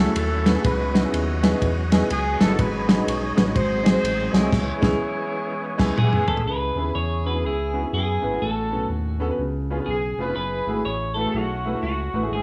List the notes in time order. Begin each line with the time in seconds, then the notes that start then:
Already playing: F#3 A3 C#4 E4 F#4 A4
0.00 G#4
0.16 D#2 C#4 E4 A4, ride
0.45 A3 C#4 E4 F#4 B4, snare, ride
0.53 A3 C#4 E4 F#4 G#4
0.64 C#2 C#3 F#3 B3 C#4 D#4 E4 F4 B4 D#5, kick, ride
0.72 F#4
0.93 B3 C#4 D#4 E4 F#4, snare, ride
1.03 B3 C#4 D#4 E4 G#4
1.13 D#2, ride
1.42 B3 C#4 D#4 E4 G#4, snare, ride
1.52 B3 C#4 D#4 E4 G#4
1.62 E2, kick, ride
1.91 B3 C#4 D#4 E4 G#4, snare, ride
2.10 C#2 G#4, ride
2.40 G1 B3 C#4 D#4 E4 G#4 A4, snare, ride
2.49 B3 C#4 D#4 E4 F#4
2.57 G#1 G#2 F#3 G#3 C#4 D#4 F#4 B4, kick, ride
2.64 G#4
2.88 G#3 C#4 D#4 F#4 G#4 B4, snare, ride
2.96 G#3 C#4 D#4 F#4 B4
3.06 B1 F#4 C#5, ride
3.35 A1 G#3 C#4 D#4 F#4 B4, snare, ride
3.45 G#3 C#4 D#4 F#4 B4
3.54 G#1 G#2 F#3 G#3 C4 D#4 F#4 G#4 C5, kick, ride
3.83 G#3 C4 D#4 F#4 G#4, snare, ride
3.92 D#4 F#4 C5
4.03 A1, ride
4.31 C2 G#3 C4 D#4 E4 F#4 G#4 C#5, snare, ride
4.41 G#3 C4 D#4 F#4 G#4
4.52 C#2 E3 G#3 B3 C#4 G#4, kick, snare, crash
4.81 C#2 G#3 B3 C#4 E4 G#4, kick, snare
5.78 C#2 G#3 B3 C#4 E4 G#4 G#5, kick, snare, crash
5.98 B3 E4 G#4 F#5, mid tom
6.02 G#4
6.13 mid tom
6.26 A4 E5, floor tom
6.37 floor tom
6.45 C#2 C#3 E4 G#4 B4
6.75 D#2 B3 C#4 E4 G#4 B4
6.95 E2 C#5
7.25 B3 C#4 E4 F#4 B4
7.34 B3 C#4 E4 G#4
7.44 C#2 B3 E4 G#4
7.73 B3 C#4 E4 F#4
7.82 B3 C#4 E4 G#4
7.93 F#2 B3 E4 G#4
8.21 G#1 B3 C#4 E4 B4
8.31 B3 C#4 E4 F#4
8.41 A1 A2 C#4 F#4 A4
8.71 B1 B3 C#4 F#4 A4
8.89 D#2
9.20 B3 C#4 F#4 A4
9.29 B3 C#4 F#4 B4
9.39 C#2 C#3
9.70 B3 C#4 F4 G#4
9.79 B3 C#4 F4 B4
9.86 B1 G#4
9.91 G#4
10.18 F1 B3 C#4 E4 F4 G#4 B4
10.28 B3 C#4 F4 G#4
10.36 F#1 B4
10.66 G#1 A3 E4 F#4 G#4
10.85 A1 C#5
11.14 A3 E4 F#4 A4 B4
11.19 A4
11.25 A3 E4 F#4 G#4
11.32 B1 A3 C#4 F#4
11.37 F#4
11.65 A3 E4 F#4 B4
11.72 A3 E4 F#4 A4
11.83 C#2 A3 C#4 F#4
12.13 A1 A3 E4 F#4 B4
12.22 A3 E4 F#4 G#4
12.31 G#1 G#2 C#4 E4 G#4